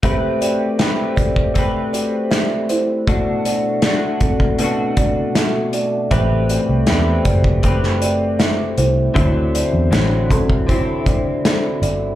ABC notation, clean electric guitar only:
X:1
M:4/4
L:1/8
Q:1/4=79
K:Ador
V:1 name="Clean electric guitar"
[A,CGB]2 [A,CGB]2 [A,CGB]4 | [B,,A,DF]2 [A,DF]2 [B,,A,DF]4 | [A,CGB]2 [A,CGB]2 [A,CGB]4 | [D,F,CE]2 [D,F,CE]2 [D,F,CE]4 |]